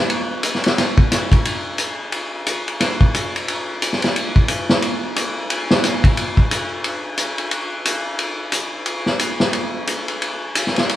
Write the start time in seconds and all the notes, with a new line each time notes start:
0.10 ride
0.43 hi-hat pedal, ride
0.55 snare
0.64 snare, ride
0.78 snare, ride
0.98 kick
1.12 snare, hi-hat pedal, ride
1.32 kick, ride
1.45 ride
1.78 hi-hat pedal, ride
2.12 ride
2.47 hi-hat pedal, ride
2.68 ride
2.80 snare, ride
3.01 kick
3.15 hi-hat pedal, ride
3.36 ride
3.48 ride
3.82 hi-hat pedal, ride
3.93 snare
4.02 snare, ride
4.16 ride
4.36 kick
4.48 hi-hat pedal, ride
4.69 snare
4.82 ride
5.16 hi-hat pedal, ride
5.50 ride
5.71 snare
5.84 snare, hi-hat pedal, ride
6.04 kick, ride
6.17 ride
6.37 kick
6.51 hi-hat pedal, ride
6.84 ride
7.17 hi-hat pedal, ride
7.38 ride
7.51 ride
7.85 hi-hat pedal, ride
8.19 ride
8.52 hi-hat pedal, ride
8.86 ride
9.06 snare
9.19 hi-hat pedal, ride
9.40 snare
9.53 ride
9.87 hi-hat pedal, ride
10.08 ride
10.22 ride
10.55 hi-hat pedal, ride
10.67 snare
10.76 snare, ride
10.89 ride